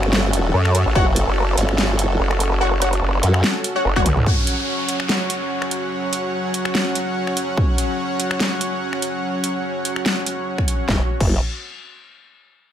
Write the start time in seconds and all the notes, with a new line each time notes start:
Already playing: G1 C#4 F#4 A4
0.03 finger snap
0.13 snare
0.33 closed hi-hat
0.54 F#2
0.65 finger snap
0.75 closed hi-hat
0.86 A1
0.95 F#1 F#4 C#5 F#5, kick
1.16 closed hi-hat
1.27 F#1
1.58 G1, closed hi-hat
1.69 finger snap
1.78 snare
1.99 F#1, closed hi-hat
2.20 F#1
2.31 finger snap
2.40 closed hi-hat
2.61 F#4 C#5 F#5
2.82 F#4 C#5 F#5, closed hi-hat
2.93 closed hi-hat
3.02 F#1
3.23 F#2, closed hi-hat
3.34 finger snap
3.44 snare
3.64 closed hi-hat
3.76 F#4 C#5 F#5
3.85 F#1
3.96 F#4 C#5 F#5, finger snap, kick, high tom
4.06 C#2, closed hi-hat, mid tom
4.17 mid tom
4.26 F#3 C#4 C#5 F#5, kick, downlifter
4.47 closed hi-hat
4.89 closed hi-hat
5.00 finger snap
5.09 snare
5.30 closed hi-hat
5.62 finger snap
5.71 closed hi-hat
6.13 closed hi-hat
6.54 closed hi-hat
6.65 finger snap
6.75 snare
6.95 closed hi-hat
7.27 finger snap
7.37 closed hi-hat
7.57 kick
7.78 closed hi-hat
8.20 closed hi-hat
8.31 finger snap
8.40 snare
8.61 closed hi-hat
8.93 finger snap
9.02 closed hi-hat
9.44 closed hi-hat
9.85 closed hi-hat
9.96 finger snap
10.06 snare
10.26 closed hi-hat
10.58 finger snap, kick
10.68 closed hi-hat
10.89 F#1 C#4 F#4 C#5, kick, snare
11.20 F#1, kick, crash